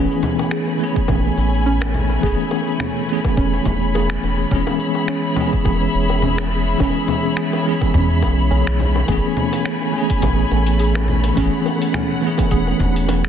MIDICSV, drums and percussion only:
0, 0, Header, 1, 2, 480
1, 0, Start_track
1, 0, Tempo, 571429
1, 1875, Time_signature, 4, 2, 24, 8
1, 11163, End_track
2, 0, Start_track
2, 0, Title_t, "Drums"
2, 91, Note_on_c, 9, 69, 31
2, 175, Note_off_c, 9, 69, 0
2, 192, Note_on_c, 9, 64, 71
2, 195, Note_on_c, 9, 69, 74
2, 276, Note_off_c, 9, 64, 0
2, 279, Note_off_c, 9, 69, 0
2, 327, Note_on_c, 9, 69, 31
2, 331, Note_on_c, 9, 60, 63
2, 411, Note_off_c, 9, 69, 0
2, 415, Note_off_c, 9, 60, 0
2, 431, Note_on_c, 9, 26, 72
2, 435, Note_on_c, 9, 69, 42
2, 515, Note_off_c, 9, 26, 0
2, 519, Note_off_c, 9, 69, 0
2, 567, Note_on_c, 9, 60, 41
2, 571, Note_on_c, 9, 69, 28
2, 651, Note_off_c, 9, 60, 0
2, 655, Note_off_c, 9, 69, 0
2, 676, Note_on_c, 9, 69, 76
2, 760, Note_off_c, 9, 69, 0
2, 808, Note_on_c, 9, 36, 94
2, 809, Note_on_c, 9, 69, 29
2, 892, Note_off_c, 9, 36, 0
2, 893, Note_off_c, 9, 69, 0
2, 908, Note_on_c, 9, 60, 70
2, 912, Note_on_c, 9, 64, 69
2, 914, Note_on_c, 9, 36, 114
2, 916, Note_on_c, 9, 69, 41
2, 992, Note_off_c, 9, 60, 0
2, 996, Note_off_c, 9, 64, 0
2, 998, Note_off_c, 9, 36, 0
2, 1000, Note_off_c, 9, 69, 0
2, 1049, Note_on_c, 9, 69, 30
2, 1133, Note_off_c, 9, 69, 0
2, 1155, Note_on_c, 9, 60, 51
2, 1158, Note_on_c, 9, 69, 73
2, 1239, Note_off_c, 9, 60, 0
2, 1242, Note_off_c, 9, 69, 0
2, 1290, Note_on_c, 9, 69, 30
2, 1374, Note_off_c, 9, 69, 0
2, 1397, Note_on_c, 9, 69, 43
2, 1481, Note_off_c, 9, 69, 0
2, 1524, Note_on_c, 9, 60, 72
2, 1527, Note_on_c, 9, 26, 78
2, 1608, Note_off_c, 9, 60, 0
2, 1611, Note_off_c, 9, 26, 0
2, 1633, Note_on_c, 9, 64, 66
2, 1636, Note_on_c, 9, 69, 68
2, 1717, Note_off_c, 9, 64, 0
2, 1720, Note_off_c, 9, 69, 0
2, 1758, Note_on_c, 9, 60, 48
2, 1771, Note_on_c, 9, 69, 29
2, 1842, Note_off_c, 9, 60, 0
2, 1855, Note_off_c, 9, 69, 0
2, 1874, Note_on_c, 9, 36, 112
2, 1877, Note_on_c, 9, 69, 42
2, 1958, Note_off_c, 9, 36, 0
2, 1961, Note_off_c, 9, 69, 0
2, 2009, Note_on_c, 9, 69, 31
2, 2093, Note_off_c, 9, 69, 0
2, 2108, Note_on_c, 9, 60, 68
2, 2113, Note_on_c, 9, 69, 71
2, 2192, Note_off_c, 9, 60, 0
2, 2197, Note_off_c, 9, 69, 0
2, 2245, Note_on_c, 9, 69, 35
2, 2329, Note_off_c, 9, 69, 0
2, 2350, Note_on_c, 9, 60, 50
2, 2352, Note_on_c, 9, 26, 77
2, 2352, Note_on_c, 9, 64, 70
2, 2356, Note_on_c, 9, 69, 43
2, 2434, Note_off_c, 9, 60, 0
2, 2436, Note_off_c, 9, 26, 0
2, 2436, Note_off_c, 9, 64, 0
2, 2440, Note_off_c, 9, 69, 0
2, 2488, Note_on_c, 9, 69, 28
2, 2572, Note_off_c, 9, 69, 0
2, 2592, Note_on_c, 9, 69, 76
2, 2676, Note_off_c, 9, 69, 0
2, 2726, Note_on_c, 9, 36, 98
2, 2726, Note_on_c, 9, 60, 76
2, 2729, Note_on_c, 9, 69, 31
2, 2810, Note_off_c, 9, 36, 0
2, 2810, Note_off_c, 9, 60, 0
2, 2813, Note_off_c, 9, 69, 0
2, 2833, Note_on_c, 9, 36, 119
2, 2834, Note_on_c, 9, 69, 42
2, 2917, Note_off_c, 9, 36, 0
2, 2918, Note_off_c, 9, 69, 0
2, 2967, Note_on_c, 9, 69, 31
2, 2971, Note_on_c, 9, 60, 48
2, 3051, Note_off_c, 9, 69, 0
2, 3055, Note_off_c, 9, 60, 0
2, 3070, Note_on_c, 9, 64, 70
2, 3073, Note_on_c, 9, 36, 64
2, 3073, Note_on_c, 9, 69, 76
2, 3154, Note_off_c, 9, 64, 0
2, 3157, Note_off_c, 9, 36, 0
2, 3157, Note_off_c, 9, 69, 0
2, 3205, Note_on_c, 9, 69, 32
2, 3289, Note_off_c, 9, 69, 0
2, 3311, Note_on_c, 9, 69, 43
2, 3320, Note_on_c, 9, 60, 80
2, 3395, Note_off_c, 9, 69, 0
2, 3404, Note_off_c, 9, 60, 0
2, 3442, Note_on_c, 9, 26, 76
2, 3446, Note_on_c, 9, 69, 28
2, 3526, Note_off_c, 9, 26, 0
2, 3530, Note_off_c, 9, 69, 0
2, 3552, Note_on_c, 9, 69, 75
2, 3559, Note_on_c, 9, 60, 50
2, 3636, Note_off_c, 9, 69, 0
2, 3643, Note_off_c, 9, 60, 0
2, 3685, Note_on_c, 9, 69, 31
2, 3769, Note_off_c, 9, 69, 0
2, 3790, Note_on_c, 9, 64, 67
2, 3791, Note_on_c, 9, 36, 114
2, 3794, Note_on_c, 9, 69, 42
2, 3874, Note_off_c, 9, 64, 0
2, 3875, Note_off_c, 9, 36, 0
2, 3878, Note_off_c, 9, 69, 0
2, 3922, Note_on_c, 9, 60, 81
2, 3922, Note_on_c, 9, 69, 30
2, 4006, Note_off_c, 9, 60, 0
2, 4006, Note_off_c, 9, 69, 0
2, 4028, Note_on_c, 9, 69, 74
2, 4112, Note_off_c, 9, 69, 0
2, 4158, Note_on_c, 9, 60, 50
2, 4164, Note_on_c, 9, 69, 31
2, 4242, Note_off_c, 9, 60, 0
2, 4248, Note_off_c, 9, 69, 0
2, 4268, Note_on_c, 9, 26, 77
2, 4272, Note_on_c, 9, 69, 43
2, 4352, Note_off_c, 9, 26, 0
2, 4356, Note_off_c, 9, 69, 0
2, 4405, Note_on_c, 9, 69, 29
2, 4489, Note_off_c, 9, 69, 0
2, 4505, Note_on_c, 9, 60, 75
2, 4507, Note_on_c, 9, 64, 68
2, 4510, Note_on_c, 9, 69, 75
2, 4589, Note_off_c, 9, 60, 0
2, 4591, Note_off_c, 9, 64, 0
2, 4594, Note_off_c, 9, 69, 0
2, 4644, Note_on_c, 9, 36, 98
2, 4644, Note_on_c, 9, 69, 32
2, 4728, Note_off_c, 9, 36, 0
2, 4728, Note_off_c, 9, 69, 0
2, 4746, Note_on_c, 9, 60, 55
2, 4750, Note_on_c, 9, 36, 120
2, 4752, Note_on_c, 9, 69, 45
2, 4830, Note_off_c, 9, 60, 0
2, 4834, Note_off_c, 9, 36, 0
2, 4836, Note_off_c, 9, 69, 0
2, 4887, Note_on_c, 9, 69, 31
2, 4971, Note_off_c, 9, 69, 0
2, 4990, Note_on_c, 9, 69, 77
2, 5074, Note_off_c, 9, 69, 0
2, 5122, Note_on_c, 9, 60, 69
2, 5123, Note_on_c, 9, 69, 30
2, 5206, Note_off_c, 9, 60, 0
2, 5207, Note_off_c, 9, 69, 0
2, 5227, Note_on_c, 9, 64, 72
2, 5231, Note_on_c, 9, 69, 48
2, 5311, Note_off_c, 9, 64, 0
2, 5315, Note_off_c, 9, 69, 0
2, 5358, Note_on_c, 9, 60, 51
2, 5362, Note_on_c, 9, 26, 72
2, 5442, Note_off_c, 9, 60, 0
2, 5446, Note_off_c, 9, 26, 0
2, 5474, Note_on_c, 9, 69, 72
2, 5558, Note_off_c, 9, 69, 0
2, 5607, Note_on_c, 9, 69, 35
2, 5691, Note_off_c, 9, 69, 0
2, 5711, Note_on_c, 9, 36, 116
2, 5712, Note_on_c, 9, 60, 80
2, 5715, Note_on_c, 9, 69, 45
2, 5795, Note_off_c, 9, 36, 0
2, 5796, Note_off_c, 9, 60, 0
2, 5799, Note_off_c, 9, 69, 0
2, 5846, Note_on_c, 9, 69, 32
2, 5930, Note_off_c, 9, 69, 0
2, 5948, Note_on_c, 9, 64, 66
2, 5952, Note_on_c, 9, 69, 71
2, 5955, Note_on_c, 9, 60, 47
2, 6032, Note_off_c, 9, 64, 0
2, 6036, Note_off_c, 9, 69, 0
2, 6039, Note_off_c, 9, 60, 0
2, 6088, Note_on_c, 9, 69, 33
2, 6172, Note_off_c, 9, 69, 0
2, 6189, Note_on_c, 9, 26, 74
2, 6193, Note_on_c, 9, 69, 43
2, 6273, Note_off_c, 9, 26, 0
2, 6277, Note_off_c, 9, 69, 0
2, 6327, Note_on_c, 9, 60, 68
2, 6327, Note_on_c, 9, 69, 27
2, 6411, Note_off_c, 9, 60, 0
2, 6411, Note_off_c, 9, 69, 0
2, 6434, Note_on_c, 9, 69, 75
2, 6518, Note_off_c, 9, 69, 0
2, 6562, Note_on_c, 9, 60, 45
2, 6564, Note_on_c, 9, 36, 97
2, 6565, Note_on_c, 9, 69, 34
2, 6646, Note_off_c, 9, 60, 0
2, 6648, Note_off_c, 9, 36, 0
2, 6649, Note_off_c, 9, 69, 0
2, 6670, Note_on_c, 9, 36, 117
2, 6671, Note_on_c, 9, 64, 74
2, 6675, Note_on_c, 9, 69, 45
2, 6754, Note_off_c, 9, 36, 0
2, 6755, Note_off_c, 9, 64, 0
2, 6759, Note_off_c, 9, 69, 0
2, 6810, Note_on_c, 9, 69, 30
2, 6894, Note_off_c, 9, 69, 0
2, 6908, Note_on_c, 9, 60, 75
2, 6910, Note_on_c, 9, 36, 62
2, 6914, Note_on_c, 9, 69, 77
2, 6992, Note_off_c, 9, 60, 0
2, 6994, Note_off_c, 9, 36, 0
2, 6998, Note_off_c, 9, 69, 0
2, 7046, Note_on_c, 9, 69, 30
2, 7130, Note_off_c, 9, 69, 0
2, 7151, Note_on_c, 9, 60, 49
2, 7154, Note_on_c, 9, 69, 45
2, 7235, Note_off_c, 9, 60, 0
2, 7238, Note_off_c, 9, 69, 0
2, 7285, Note_on_c, 9, 26, 72
2, 7289, Note_on_c, 9, 69, 29
2, 7369, Note_off_c, 9, 26, 0
2, 7373, Note_off_c, 9, 69, 0
2, 7391, Note_on_c, 9, 64, 69
2, 7395, Note_on_c, 9, 69, 75
2, 7475, Note_off_c, 9, 64, 0
2, 7479, Note_off_c, 9, 69, 0
2, 7523, Note_on_c, 9, 60, 74
2, 7526, Note_on_c, 9, 69, 31
2, 7607, Note_off_c, 9, 60, 0
2, 7610, Note_off_c, 9, 69, 0
2, 7628, Note_on_c, 9, 42, 39
2, 7630, Note_on_c, 9, 60, 52
2, 7631, Note_on_c, 9, 36, 110
2, 7631, Note_on_c, 9, 69, 42
2, 7712, Note_off_c, 9, 42, 0
2, 7714, Note_off_c, 9, 60, 0
2, 7715, Note_off_c, 9, 36, 0
2, 7715, Note_off_c, 9, 69, 0
2, 7768, Note_on_c, 9, 69, 28
2, 7852, Note_off_c, 9, 69, 0
2, 7869, Note_on_c, 9, 64, 75
2, 7873, Note_on_c, 9, 69, 72
2, 7953, Note_off_c, 9, 64, 0
2, 7957, Note_off_c, 9, 69, 0
2, 8002, Note_on_c, 9, 60, 73
2, 8004, Note_on_c, 9, 42, 54
2, 8008, Note_on_c, 9, 69, 34
2, 8086, Note_off_c, 9, 60, 0
2, 8088, Note_off_c, 9, 42, 0
2, 8092, Note_off_c, 9, 69, 0
2, 8110, Note_on_c, 9, 26, 72
2, 8110, Note_on_c, 9, 42, 40
2, 8114, Note_on_c, 9, 69, 43
2, 8194, Note_off_c, 9, 26, 0
2, 8194, Note_off_c, 9, 42, 0
2, 8198, Note_off_c, 9, 69, 0
2, 8245, Note_on_c, 9, 60, 45
2, 8249, Note_on_c, 9, 69, 29
2, 8329, Note_off_c, 9, 60, 0
2, 8333, Note_off_c, 9, 69, 0
2, 8354, Note_on_c, 9, 69, 71
2, 8438, Note_off_c, 9, 69, 0
2, 8483, Note_on_c, 9, 42, 54
2, 8484, Note_on_c, 9, 36, 91
2, 8487, Note_on_c, 9, 69, 31
2, 8567, Note_off_c, 9, 42, 0
2, 8568, Note_off_c, 9, 36, 0
2, 8571, Note_off_c, 9, 69, 0
2, 8586, Note_on_c, 9, 42, 41
2, 8586, Note_on_c, 9, 64, 77
2, 8590, Note_on_c, 9, 69, 43
2, 8591, Note_on_c, 9, 36, 106
2, 8600, Note_on_c, 9, 60, 73
2, 8670, Note_off_c, 9, 42, 0
2, 8670, Note_off_c, 9, 64, 0
2, 8674, Note_off_c, 9, 69, 0
2, 8675, Note_off_c, 9, 36, 0
2, 8684, Note_off_c, 9, 60, 0
2, 8724, Note_on_c, 9, 69, 30
2, 8808, Note_off_c, 9, 69, 0
2, 8829, Note_on_c, 9, 69, 77
2, 8833, Note_on_c, 9, 60, 51
2, 8913, Note_off_c, 9, 69, 0
2, 8917, Note_off_c, 9, 60, 0
2, 8958, Note_on_c, 9, 42, 49
2, 8962, Note_on_c, 9, 69, 32
2, 9042, Note_off_c, 9, 42, 0
2, 9046, Note_off_c, 9, 69, 0
2, 9067, Note_on_c, 9, 42, 44
2, 9071, Note_on_c, 9, 69, 43
2, 9151, Note_off_c, 9, 42, 0
2, 9155, Note_off_c, 9, 69, 0
2, 9201, Note_on_c, 9, 26, 69
2, 9201, Note_on_c, 9, 60, 71
2, 9285, Note_off_c, 9, 26, 0
2, 9285, Note_off_c, 9, 60, 0
2, 9308, Note_on_c, 9, 64, 77
2, 9312, Note_on_c, 9, 69, 69
2, 9392, Note_off_c, 9, 64, 0
2, 9396, Note_off_c, 9, 69, 0
2, 9439, Note_on_c, 9, 42, 50
2, 9439, Note_on_c, 9, 60, 53
2, 9443, Note_on_c, 9, 69, 34
2, 9523, Note_off_c, 9, 42, 0
2, 9523, Note_off_c, 9, 60, 0
2, 9527, Note_off_c, 9, 69, 0
2, 9551, Note_on_c, 9, 42, 39
2, 9552, Note_on_c, 9, 36, 100
2, 9554, Note_on_c, 9, 69, 40
2, 9635, Note_off_c, 9, 42, 0
2, 9636, Note_off_c, 9, 36, 0
2, 9638, Note_off_c, 9, 69, 0
2, 9689, Note_on_c, 9, 69, 28
2, 9773, Note_off_c, 9, 69, 0
2, 9793, Note_on_c, 9, 60, 74
2, 9798, Note_on_c, 9, 69, 70
2, 9877, Note_off_c, 9, 60, 0
2, 9882, Note_off_c, 9, 69, 0
2, 9926, Note_on_c, 9, 42, 53
2, 9929, Note_on_c, 9, 69, 31
2, 10010, Note_off_c, 9, 42, 0
2, 10013, Note_off_c, 9, 69, 0
2, 10020, Note_on_c, 9, 60, 43
2, 10032, Note_on_c, 9, 26, 69
2, 10032, Note_on_c, 9, 42, 41
2, 10032, Note_on_c, 9, 64, 75
2, 10035, Note_on_c, 9, 69, 41
2, 10104, Note_off_c, 9, 60, 0
2, 10116, Note_off_c, 9, 26, 0
2, 10116, Note_off_c, 9, 42, 0
2, 10116, Note_off_c, 9, 64, 0
2, 10119, Note_off_c, 9, 69, 0
2, 10170, Note_on_c, 9, 69, 27
2, 10254, Note_off_c, 9, 69, 0
2, 10276, Note_on_c, 9, 69, 74
2, 10360, Note_off_c, 9, 69, 0
2, 10398, Note_on_c, 9, 60, 74
2, 10405, Note_on_c, 9, 36, 100
2, 10405, Note_on_c, 9, 42, 52
2, 10409, Note_on_c, 9, 69, 31
2, 10482, Note_off_c, 9, 60, 0
2, 10489, Note_off_c, 9, 36, 0
2, 10489, Note_off_c, 9, 42, 0
2, 10493, Note_off_c, 9, 69, 0
2, 10508, Note_on_c, 9, 42, 40
2, 10512, Note_on_c, 9, 36, 109
2, 10512, Note_on_c, 9, 69, 39
2, 10592, Note_off_c, 9, 42, 0
2, 10596, Note_off_c, 9, 36, 0
2, 10596, Note_off_c, 9, 69, 0
2, 10644, Note_on_c, 9, 60, 48
2, 10650, Note_on_c, 9, 69, 28
2, 10728, Note_off_c, 9, 60, 0
2, 10734, Note_off_c, 9, 69, 0
2, 10751, Note_on_c, 9, 36, 60
2, 10754, Note_on_c, 9, 64, 79
2, 10758, Note_on_c, 9, 69, 70
2, 10835, Note_off_c, 9, 36, 0
2, 10838, Note_off_c, 9, 64, 0
2, 10842, Note_off_c, 9, 69, 0
2, 10888, Note_on_c, 9, 42, 48
2, 10892, Note_on_c, 9, 69, 31
2, 10972, Note_off_c, 9, 42, 0
2, 10976, Note_off_c, 9, 69, 0
2, 10991, Note_on_c, 9, 60, 77
2, 10994, Note_on_c, 9, 42, 43
2, 10997, Note_on_c, 9, 69, 43
2, 11075, Note_off_c, 9, 60, 0
2, 11078, Note_off_c, 9, 42, 0
2, 11081, Note_off_c, 9, 69, 0
2, 11126, Note_on_c, 9, 26, 70
2, 11130, Note_on_c, 9, 69, 27
2, 11163, Note_off_c, 9, 26, 0
2, 11163, Note_off_c, 9, 69, 0
2, 11163, End_track
0, 0, End_of_file